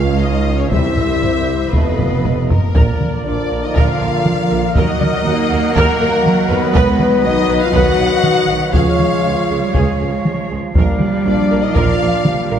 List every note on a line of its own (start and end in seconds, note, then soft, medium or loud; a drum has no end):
0.00 0.68 C#2 medium
0.00 0.72 G#3 medium
0.00 0.21 F4 medium
0.00 0.72 F4 medium
0.00 0.68 G#4 medium
0.00 0.72 C#5 medium
0.00 0.21 F5 medium
0.00 0.22 F5 medium
0.00 0.72 F5 medium
0.21 0.59 D#4 medium
0.21 0.59 D#5 medium
0.58 0.71 C#4 medium
0.58 0.71 C#5 medium
0.58 0.72 C#5 medium
0.69 1.71 C2 medium
0.69 1.56 C2 medium
0.69 1.71 C2 medium
0.69 1.44 C3 medium
0.69 0.89 E3 medium
0.69 0.89 G3 medium
0.69 1.73 G3 medium
0.69 1.72 E4 medium
0.69 1.73 G4 medium
0.69 1.73 C5 medium
0.69 1.70 E5 medium
0.69 1.71 E5 medium
0.69 1.73 E5 medium
0.69 taiko medium
0.97 taiko low soft
1.22 taiko low soft
1.72 2.53 F1 medium
1.72 2.54 F1 medium
1.72 2.53 F2 medium
1.72 1.91 D#3 medium
1.72 2.50 A3 medium
1.72 1.91 A3 medium
1.72 2.48 B3 medium
1.72 2.50 F4 medium
1.72 2.55 A4 medium
1.72 2.50 B4 medium
1.72 2.50 D#5 medium
1.72 2.55 D#5 medium
1.72 2.50 F5 medium
1.72 taiko medium
1.99 taiko low-mid medium
2.25 taiko low-mid medium
2.49 3.22 A#3 medium
2.49 3.21 A#4 medium
2.49 3.22 A#4 medium
2.49 taiko low medium
2.75 2.84 A#1 medium
2.75 2.86 A#1 medium
2.75 4.73 D3 medium
2.75 4.73 F3 medium
2.75 4.72 A#3 medium
2.75 4.72 F4 medium
2.75 2.98 A#4 medium
2.75 6.71 A#4 medium
2.75 4.72 D5 medium
2.75 taiko medium
3.01 taiko mid medium
3.25 3.33 A#1 medium
3.25 3.36 A#1 medium
3.25 3.63 D4 medium
3.25 3.35 F4 medium
3.25 3.63 D5 medium
3.51 3.59 A#1 soft
3.51 3.61 A#1 medium
3.51 3.59 A#4 medium
3.65 3.77 D#4 medium
3.65 3.77 D#5 medium
3.75 3.84 A#1 medium
3.75 3.87 A#1 medium
3.75 4.22 D3 medium
3.75 4.60 F4 medium
3.75 3.99 A#4 medium
3.75 4.76 F5 medium
3.75 4.77 F5 medium
3.75 taiko medium
4.01 4.09 A#1 medium
4.01 4.11 A#1 medium
4.01 4.09 A#4 medium
4.25 4.76 F3 medium
4.25 taiko mid medium
4.51 4.59 A#1 medium
4.51 4.62 A#1 medium
4.51 4.59 A#4 medium
4.76 4.84 D#2 medium
4.76 4.86 D#2 medium
4.76 8.74 D#3 medium
4.76 5.25 F#3 medium
4.76 8.71 F#3 medium
4.76 8.74 D#4 medium
4.76 5.74 D#4 medium
4.76 8.74 F#4 medium
4.76 4.99 A#4 medium
4.76 5.74 D#5 medium
4.76 8.74 D#5 medium
4.76 5.74 D#5 loud
4.76 6.71 F#5 medium
4.76 taiko medium
5.01 taiko mid medium
5.25 5.34 D#2 medium
5.25 5.36 D#2 medium
5.25 6.23 A#3 loud
5.25 5.35 F#4 medium
5.50 5.60 D#2 medium
5.50 5.59 D#2 medium
5.50 5.59 A#4 medium
5.74 5.85 D#2 loud
5.74 5.84 D#2 loud
5.74 6.49 A#3 loud
5.74 6.48 A#4 loud
5.74 5.99 A#4 loud
5.74 6.51 A#4 loud
5.74 taiko medium
6.01 6.09 D#2 medium
6.01 6.11 D#2 medium
6.01 6.09 A#4 medium
6.25 6.74 F#3 loud
6.25 taiko mid medium
6.49 6.58 D#2 medium
6.49 6.60 D#2 medium
6.49 7.23 B3 loud
6.49 6.58 A#4 medium
6.49 7.24 B4 medium
6.74 6.83 B1 loud
6.74 6.85 B1 loud
6.74 7.24 G#3 medium
6.74 8.70 B4 medium
6.74 6.98 B4 loud
6.74 8.75 B4 loud
6.74 8.71 D#5 medium
6.74 taiko loud
7.00 taiko mid medium
7.24 7.32 B1 medium
7.24 7.35 B1 medium
7.24 7.74 F#3 medium
7.24 7.62 D#4 loud
7.24 7.33 F#4 medium
7.24 7.61 D#5 loud
7.24 7.60 D#5 loud
7.48 7.56 B1 medium
7.48 7.60 B1 medium
7.48 7.57 B4 medium
7.60 7.75 F4 loud
7.60 7.73 F5 medium
7.60 7.74 F5 loud
7.73 7.81 B1 loud
7.73 7.84 B1 loud
7.73 8.22 D#3 medium
7.73 8.74 F#4 loud
7.73 7.97 B4 medium
7.73 8.74 F#5 loud
7.73 taiko medium
7.98 8.06 B1 medium
7.98 8.09 B1 medium
7.98 8.06 B4 medium
8.23 8.73 D#3 medium
8.23 taiko mid medium
8.48 8.56 B1 medium
8.48 8.59 B1 soft
8.48 8.57 B4 medium
8.72 8.81 C#2 medium
8.72 8.84 C#2 medium
8.72 9.19 F3 medium
8.72 12.59 F3 medium
8.72 10.51 G#3 medium
8.72 10.49 C#4 medium
8.72 10.22 F4 loud
8.72 10.50 G#4 medium
8.72 8.98 G#4 medium
8.72 10.50 C#5 medium
8.72 10.47 C#5 medium
8.72 10.52 C#5 medium
8.72 10.22 F5 medium
8.72 12.59 F5 medium
8.72 10.22 F5 medium
8.72 taiko medium
8.99 taiko mid medium
9.23 9.32 C#2 medium
9.23 9.35 C#2 medium
9.23 9.59 F3 medium
9.23 9.33 F4 medium
9.50 9.58 C#2 soft
9.50 9.60 C#2 medium
9.50 9.58 G#4 soft
9.63 9.75 G3 medium
9.74 9.83 C#2 medium
9.74 9.86 C#2 medium
9.74 10.75 G#3 medium
9.74 9.99 G#4 medium
9.74 taiko medium
10.01 10.09 C#2 medium
10.01 10.11 C#2 medium
10.01 10.09 G#4 medium
10.25 taiko mid medium
10.50 10.58 C#2 soft
10.50 10.61 C#2 soft
10.50 10.59 G#4 soft
10.75 10.83 A#1 medium
10.75 10.86 A#1 loud
10.75 11.71 G3 medium
10.75 12.59 A#3 medium
10.75 12.59 D4 medium
10.75 12.59 A#4 medium
10.75 10.99 A#4 medium
10.75 12.59 D5 medium
10.75 taiko medium
11.01 taiko mid medium
11.24 11.36 A#1 medium
11.24 11.34 A#1 medium
11.24 11.60 D4 loud
11.24 11.34 F4 medium
11.24 11.60 D5 medium
11.51 11.61 A#1 medium
11.51 11.59 A#1 medium
11.51 11.59 A#4 medium
11.62 11.75 D#4 medium
11.62 11.75 D#5 medium
11.62 11.76 D#5 medium
11.75 11.86 A#1 medium
11.75 11.84 A#1 medium
11.75 12.25 F3 medium
11.75 12.59 F4 medium
11.75 11.98 A#4 medium
11.75 12.59 F5 loud
11.75 12.59 F5 medium
11.75 taiko medium
12.00 12.08 A#1 medium
12.00 12.11 A#1 medium
12.00 12.08 A#4 medium
12.25 12.59 G3 medium
12.25 taiko mid medium
12.50 12.58 A#1 medium
12.50 12.59 A#1 medium
12.50 12.58 A#4 medium